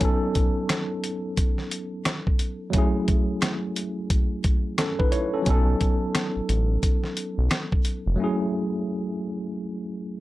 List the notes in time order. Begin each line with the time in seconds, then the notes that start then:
Already playing: F#3
0.00 B3 C#4 D#4, kick, closed hi-hat
0.05 A4
0.35 kick, closed hi-hat
0.69 cross-stick, snare, closed hi-hat
1.04 closed hi-hat
1.37 kick, closed hi-hat
1.58 snare
1.71 closed hi-hat
2.05 cross-stick, snare, closed hi-hat
2.27 kick
2.39 closed hi-hat
2.70 F#3 A3, kick, closed hi-hat
2.74 C#4 E4
2.78 G#4
3.08 kick, closed hi-hat
3.42 cross-stick, snare, closed hi-hat
3.76 closed hi-hat
4.10 kick, closed hi-hat
4.44 kick, closed hi-hat
4.78 C#4 A4, cross-stick, snare, closed hi-hat
4.99 D#4 B4, kick
5.12 E4 C#5, closed hi-hat
5.34 C#4 A4
5.42 F#3 B3 C#4, closed hi-hat
5.47 B1 D#4 A4, kick
5.81 kick, closed hi-hat
6.15 cross-stick, snare, closed hi-hat
6.36 A1
6.49 A1, closed hi-hat
6.83 kick, closed hi-hat
7.04 snare
7.17 closed hi-hat
7.38 B1
7.51 cross-stick, snare, closed hi-hat
7.72 kick
7.85 closed hi-hat
8.06 F1
8.16 F#3 A3
8.20 C#4 E4 G#4